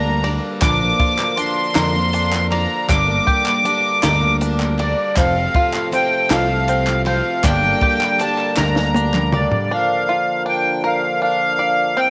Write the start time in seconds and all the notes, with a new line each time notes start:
Already playing: D2 D3 G3 A#3 D4 G4 A#4 A#5
0.05 G3 A#3 D4 A#4
0.23 G3 A#3 D4 A#4 D5, ride
0.60 A#1 A#2 D3 F3 A#3 D4 A#4 D6, kick, clap, ride, shaker
0.80 F3 A#3 D4 A#4
1.00 F4, kick, ride
1.18 F3 A#3 D4 A#4, clap, shaker
1.36 F3 A#3 D4 A#4 C6, ride, shaker
1.74 F2 A#2 D3 F3 A#3 D4 A#4, snare, clap, ride
1.93 F3 A#3 D4 A#4
2.13 D4, ride, shaker
2.31 F3 A#3 D4 A#4, clap, shaker
2.51 F3 A#3 D4 A#4 D5 A#5, clap, ride
2.88 G1 G2 D3 G3 A#3 D4 A#4 D6, kick, clap, ride, shaker
3.07 G3 A#3 D4 A#4
3.27 G4, kick, ride
3.45 G3 A#3 D4 A#4, clap, shaker
3.64 G3 A#3 D4 A#4, ride, shaker
4.03 D2 G2 D3 G3 A#3 D4 A#4, snare, clap, ride
4.22 G3 A#3 D4 A#4
4.41 D4, ride, shaker
4.59 G3 A#3 D4 A#4, clap, shaker
4.78 G3 A#3 D4 A#4 D5, clap, ride
5.17 F1 C3 F3 A3 C4 F4 A4 F5, kick, clap, ride, shaker
5.35 C4 F4 A4
5.55 F4, kick, ride
5.73 C4 F4 A4, clap
5.91 F3 C4 F4 A4 G5, ride, shaker
6.29 C2 F3 C4 F4 A4 F5, snare, clap, ride
6.48 C4 F4 A4
6.68 C4, ride, shaker
6.86 C4 F4 A4, clap
7.05 F3 C4 F4 A4 C5 F5, clap, ride
7.43 G1 G2 D3 G3 A#3 D4 G4 G5, kick, clap, ride, shaker
7.62 G3 A#3 D4 G4, shaker
7.81 G4, kick, ride
8.00 G3 A#3 D4 G4, clap
8.18 G3 A#3 D4 G4 A5, clap, ride, shaker
8.38 clap
8.56 D2 G2 D3 G3 A#3 D4 G4 A#4 A#5, snare, clap
8.76 G3 A#3 D4 G4, snare, clap
8.94 D4, high tom, shaker
9.13 G3 A#3 D4 G4, clap, mid tom
9.32 G3 A#3 D4 G4 D5, mid tom
9.52 floor tom
9.71 D3 F3 A#3 D4 F5
10.09 F4
10.46 D4 G5
10.84 A#4 F5
11.22 D4 F5
11.59 D5
11.97 C3 G3 C4 E4 G5